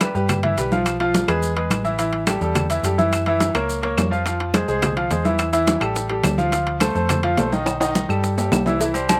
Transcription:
0.01 G3 G4 B4, high conga, high timbale, claves, maracas
0.14 G2 G3 G4 B4, high conga, maracas
0.29 high conga, low conga, high timbale, claves, maracas
0.43 E3 E4 E5, high conga, low conga, high timbale
0.58 B1 G3 G4 B4, high conga, high timbale, maracas
0.72 F3 F4 F5, high conga, maracas
0.86 high conga, high timbale, claves, maracas
1.00 F3 F4 F5, high conga, high timbale
1.14 high conga, high timbale, maracas
1.28 E2 G#3 G#4 B4, high conga, high timbale, claves, maracas
1.42 high conga, maracas
1.56 G#3 G#4 B4, high conga, high timbale
1.70 A1, high conga, high timbale, claves, maracas
1.84 E3 E4 E5, maracas
1.99 E3 E4 E5, high conga, high timbale, maracas
2.13 high conga, high timbale
2.27 G3 G4 A4, high conga, high timbale, claves, maracas
2.41 E2 G3 G4 A4, high conga, maracas
2.55 high conga, low conga, high timbale, claves, maracas
2.70 E3 E4 E5, high conga, high timbale, maracas
2.83 F#2 G3 G4 A4, high conga, high timbale, maracas
2.98 E3 E4 E5, high conga, maracas
3.13 high conga, high timbale, claves, maracas
3.26 E3 E4 E5, high conga, high timbale
3.40 high conga, high timbale, maracas
3.55 C#2 A#3 A#4 C#5, high conga, high timbale, claves, maracas
3.69 high conga, maracas
3.83 A#3 A#4 C#5, high conga, high timbale
3.97 F2, high conga, high timbale, low timbale, claves, maracas
4.11 F3 F4 F5, maracas
4.25 F3 F4 F5, high bongo, high conga, high timbale, maracas
4.40 high bongo, high conga, high timbale
4.54 G#3 G#4 C5, high bongo, high conga, high timbale, claves, maracas
4.68 C2 G#3 G#4 C5, high bongo, high conga, maracas
4.82 high bongo, high conga, low conga, high timbale, claves, maracas
4.96 F3 F4 F5, high bongo, high conga, high timbale
5.10 E2 G#3 G#4 C5, high bongo, low bongo, high conga, high timbale, maracas
5.25 E3 E4 E5, high conga, maracas
5.39 high bongo, high conga, high timbale, claves, maracas
5.53 E3 E4 E5, high bongo, high conga, high timbale, maracas
5.67 high bongo, high conga, high timbale, maracas
5.80 A1 G3 G4 A4, high bongo, high conga, high timbale, claves, maracas
5.96 high bongo, high conga, maracas
6.09 G3 G4 A4, high bongo, high conga, high timbale
6.23 D2, high bongo, low bongo, high conga, high timbale, low timbale, claves, maracas
6.38 F3 F4 F5, high conga, maracas
6.52 F3 F4 F5, high bongo, high timbale, maracas
6.67 high bongo, high conga, high timbale
6.80 A3 A4 C5, high bongo, high conga, high timbale, claves, maracas
6.95 F2 A3 A4 C5, high bongo, high conga, maracas
7.09 high bongo, high conga, low conga, high timbale, claves, maracas
7.23 F3 F4 F5, high bongo, high conga, high timbale
7.37 B1 A3 A4 C5, high bongo, low bongo, high conga, high timbale, low timbale, maracas
7.52 D#3 D#4 D#5, high conga, maracas
7.66 high bongo, high conga, high timbale, claves, maracas
7.80 D#3 D#4 D#5, high bongo, high conga, high timbale, maracas
7.95 high bongo, high conga, maracas
8.09 G2 G3 G4 A4, high bongo, high conga, claves, maracas
8.24 high bongo, high conga, maracas
8.37 G3 G4 A4, high bongo, high conga, low timbale, maracas
8.52 C2, high bongo, low bongo, high conga, low timbale, claves, maracas
8.66 E3 E4 E5, high conga, low timbale, maracas
8.80 E3 E4 E5, cowbell, high conga, maracas
8.94 G3 G4 C5, high conga, low agogo, maracas
9.09 cowbell, high conga, low agogo, claves, maracas

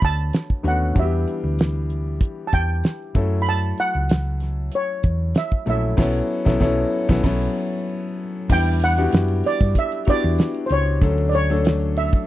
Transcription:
Already playing: D3 A3 B3 C#4 F#4
0.02 D2 A5, kick, closed hi-hat
0.33 snare, closed hi-hat
0.50 kick
0.63 D#2 D3 A3 B3 C#4 F#4, closed hi-hat
0.68 F#5
0.95 E2 E3 G3 B3 D4 F#4, kick, closed hi-hat
0.99 G4 E5
1.27 closed hi-hat
1.44 D2
1.59 snare, closed hi-hat
1.90 closed hi-hat
2.21 kick, closed hi-hat
2.47 A5
2.53 E2 G5, kick, closed hi-hat
2.84 snare, closed hi-hat
3.15 F#2 F#3 A3 C#4 E4 A4, kick, closed hi-hat
3.42 B5
3.46 A5, closed hi-hat
3.78 F#5, closed hi-hat
3.94 C#2, closed hi-hat
4.09 snare, closed hi-hat
4.40 snare, closed hi-hat
4.72 C#5, closed hi-hat
5.03 E2, kick, closed hi-hat
5.35 E5, snare, closed hi-hat
5.52 kick
5.66 A#1 F#3 A3 C#4 E4 A4 E5, closed hi-hat
5.97 B1 F#3 B3 C#4 E4 A4, kick, snare, crash
6.45 B1 F#3 B3 C#4 E4 A4, kick, snare
6.60 B1 F#3 B3 C#4 E4 A4, kick, snare
7.09 B1 F#3 B3 C#4 E4 A4, kick, snare
7.23 B1 F#3 B3 C#4 E4 A4, kick, snare, crash
8.49 E2 G3 B3 D4 E4 G4 G5, kick, crash, muted triangle
8.66 muted triangle
8.80 F#5, closed hi-hat, triangle
8.97 B3 D4 E4 F#4 G4, closed hi-hat, muted triangle
9.11 F#2, snare, closed hi-hat, muted triangle
9.28 muted triangle
9.44 D5, snare, open hi-hat, triangle
9.61 G2, kick, muted triangle
9.75 E5, kick, closed hi-hat, muted triangle
9.92 closed hi-hat, muted triangle
10.05 B3 D4 E4 F#4 G4, muted fingered electric bass stroke, kick, closed hi-hat, triangle
10.10 D5
10.24 E2, muted triangle
10.38 snare, closed hi-hat, muted triangle
10.55 muted triangle
10.66 C5, triangle
10.70 C#2 C#5, closed hi-hat
10.86 muted triangle
11.01 D2 F#3 A3 C#4 D4 A4, kick, closed hi-hat, muted triangle
11.18 muted triangle
11.29 D5, triangle
11.33 C#5, closed hi-hat
11.49 F#3 A3 C#4 D4 A4, closed hi-hat, muted triangle
11.64 snare, closed hi-hat, muted triangle
11.80 muted triangle
11.97 E5, open hi-hat, triangle
12.13 kick, muted triangle

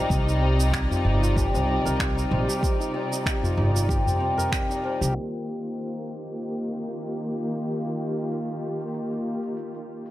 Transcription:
Already playing: C3 G3 D#4 F4 G4 A#4 C5 D5
0.10 C2 C4, kick, shaker
0.27 D#4, shaker
0.42 C4
0.59 D#4, shaker
0.73 G3, finger snap, kick, shaker
0.91 F4, tabla ge, shaker
1.05 G1 D#4
1.22 F4, shaker
1.36 G4, kick, tabla na, shaker
1.54 C2 C4, tabla na, tabla tin, shaker
1.68 C4
1.85 C2 A#4, shaker
1.99 G3, finger snap, kick, shaker
2.17 D#4, shaker
2.31 A#1 C5
2.48 G4, tabla na, tabla tin, shaker
2.62 C4, kick, shaker
2.80 D#4, shaker
2.94 C4, tabla tin
3.11 D#4, shaker
3.26 G3, finger snap, kick, shaker
3.43 F4, tabla ge, shaker
3.57 G1 D#4, tabla tin
3.74 F4, tabla tin, shaker
3.89 G4, kick, shaker
4.06 C4, tabla ge, shaker
4.20 C4, tabla tin
4.38 A#4, tabla ge, shaker
4.52 G3, finger snap, kick, shaker
4.69 D#4, tabla tin, shaker
4.83 C5, tabla na
5.01 C2 G4, shaker
5.15 D#3 A#3 F4 G4, open hi-hat
5.33 open hi-hat, shaker
5.65 open hi-hat, shaker
5.79 open hi-hat, shaker
5.98 shaker
6.28 open hi-hat, shaker
6.42 open hi-hat, shaker
6.60 shaker
6.91 open hi-hat, shaker
7.05 open hi-hat, shaker
7.24 shaker
7.54 open hi-hat, shaker
7.68 open hi-hat, shaker
7.86 open hi-hat, shaker
8.17 open hi-hat, shaker
8.32 open hi-hat, shaker
8.50 shaker
8.80 open hi-hat, shaker
8.95 open hi-hat, shaker
9.12 open hi-hat, shaker
9.43 open hi-hat, shaker
9.57 open hi-hat, shaker
9.74 open hi-hat, shaker
10.06 open hi-hat, shaker

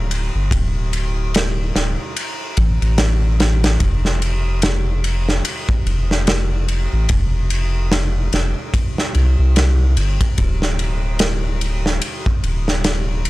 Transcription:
Already playing: D1
0.11 ride
0.35 G1
0.51 D1, kick, ride
0.93 ride
1.34 snare, ride
1.75 D1, snare, ride
2.16 ride
2.57 A1, kick, ride
2.82 A1, ride
2.98 snare, ride
3.40 snare, ride
3.64 snare, ride
3.80 F1, kick, ride
4.05 snare
4.22 ride
4.62 snare, ride
5.04 ride
5.29 snare
5.45 ride
5.69 kick
5.86 F1, ride
6.11 snare
6.27 snare, ride
6.68 ride
6.93 A1
7.09 F1, kick, ride
7.50 ride
7.92 snare, ride
8.33 F1, snare, ride
8.74 kick, ride
8.98 snare
9.15 C2, ride
9.39 C2
9.56 snare, ride
9.97 G1, ride
10.21 kick, ride
10.38 D1, kick, ride
10.62 snare
10.79 ride
11.19 snare, ride
11.61 ride
11.86 snare
12.02 ride
12.26 kick
12.44 D1, ride
12.68 snare
12.84 snare, ride
13.25 ride

